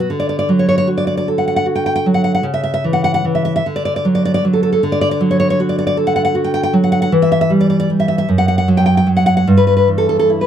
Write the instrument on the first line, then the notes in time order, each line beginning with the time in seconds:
nylon-string guitar
0.00 F#4
0.10 D3
0.20 D5
0.29 D5
0.39 D5
0.49 F#3
0.59 C#5
0.69 C#5
0.78 C#5
0.87 F#4
0.98 D5
1.07 D5
1.17 D5
1.28 A4
1.38 F#5
1.48 F#5
1.56 F#5
1.66 F#4
1.76 G5
1.86 G5
1.96 G5
2.06 F#3
2.14 F#5
2.24 F#5
2.35 F#5
2.43 C#3
2.54 E5
2.63 E5
2.74 E5
2.84 E3
2.93 F#5
3.04 F#5
3.14 F#5
3.25 E3
3.35 E5
3.45 E5
3.56 E5
3.66 D3
3.76 D5
3.85 D5
3.96 D5
4.05 F#3
4.15 D5
4.25 D5
4.34 D5
4.45 F#3
4.53 A4
4.63 A4
4.72 A4
4.83 D3
4.92 D5
5.01 D5
5.11 D5
5.21 F#3
5.31 C#5
5.40 C#5
5.50 C#5
5.60 F#4
5.69 D5
5.79 D5
5.87 D5
5.97 A4
6.07 F#5
6.16 F#5
6.25 F#5
6.35 F#4
6.44 G5
6.54 G5
6.63 G5
6.73 F#3
6.84 F#5
6.92 F#5
7.02 F#5
7.12 E3
7.22 E5
7.32 E5
7.41 E5
7.50 G3
7.61 D5
7.70 D5
7.80 D5
7.90 G3
8.00 E5
8.08 E5
8.18 E5
8.29 F#2
8.38 F#5
8.48 F#5
8.58 F#5
8.68 F#3
8.77 G5
8.86 G5
8.97 G5
9.07 F#3
9.17 F#5
9.26 F#5
9.37 F#5
9.47 G2
9.57 B4
9.67 B4
9.77 B4
9.88 E3
9.98 A4
10.09 A4
10.19 A4
10.30 E4
10.41 B4